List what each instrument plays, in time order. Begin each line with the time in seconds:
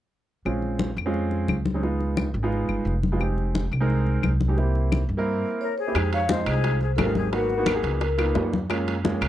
0.45 upright bass A#1, grand piano G#3 C4 C#4 F4, high conga, claves
0.62 high conga
0.79 high conga
0.97 upright bass F2, high conga, claves
1.06 grand piano G#3 C4 C#4 F4
1.14 high conga
1.31 high conga
1.48 upright bass C#2, high conga, claves
1.66 high conga
1.74 grand piano G#3 C4 C#4 D#4
1.82 grand piano G#3 B3 D#4 F4, high conga
2.01 high conga
2.17 high conga, claves
2.34 upright bass G#1, high conga
2.43 grand piano G#3 B3 D#4 F4
2.52 high conga
2.68 upright bass G1, high conga, claves
2.85 upright bass F1, high conga
3.03 high conga
3.12 grand piano G#3 B3 D#4 F4
3.20 grand piano G#3 C4 D#4 G4, high conga, claves
3.38 high conga
3.55 high conga
3.71 upright bass C2, high conga, claves
3.80 grand piano G#3 C4 D#4 A#4
3.90 high conga
4.07 high conga
4.23 upright bass C2, high conga, claves
4.41 high conga
4.48 grand piano G#3 C4 D#4 G4
4.57 grand piano A#3 C4 E4 G4, high conga
4.75 high conga
4.92 high conga, claves
5.09 upright bass G2, high conga
5.17 grand piano A#3 C4 E4 A#4
5.61 flute A#4, vibraphone C#5
5.78 flute G#4, vibraphone C5
5.87 grand piano A#3 C4 E4 G4
5.95 upright bass F2, grand piano G#3 C4 D#4 G4, high bongo, high conga, high timbale, claves
6.13 flute C#5, vibraphone F5, high bongo, high conga, high timbale
6.29 grand piano G#3 C4 D#4 F4, flute C5, vibraphone D#5, high bongo, high conga, low timbale
6.46 upright bass C2, flute G#4, vibraphone C5, high bongo, high conga, high timbale, claves
6.64 high bongo, high conga, high timbale
6.81 flute G#4, vibraphone C5, high bongo, high conga
6.95 upright bass G#1, flute F4, vibraphone A4, high bongo, low bongo, high conga, high timbale, low timbale, claves
7.01 vibraphone A#4
7.06 grand piano G#3 C4 D#4 G4
7.15 flute G#4, vibraphone C5, high conga
7.32 grand piano A#3 B3 D#4 F#4, flute F#4, vibraphone A#4, high bongo, high conga, high timbale
7.50 high bongo, high conga
7.57 grand piano A#3 B3 D#4 F#4
7.66 high bongo, high conga, high timbale, low timbale, claves
7.74 grand piano A#3 B3 D#4 G#4
7.83 upright bass C#2, high bongo, high conga, high timbale
8.01 high bongo, high conga, high timbale
8.18 grand piano A#3 B3 D#4 F4, high conga, high timbale, claves
8.35 upright bass F#2, high bongo, low bongo, high conga, low timbale
8.53 high bongo, high conga
8.70 grand piano G#3 A#3 C#4 F4, high bongo, high conga, high timbale, claves
8.87 high bongo, high conga, high timbale
9.04 grand piano G#3 A#3 C#4 F4, high bongo, high conga, low timbale
9.21 upright bass C#2, high bongo, high conga, high timbale, claves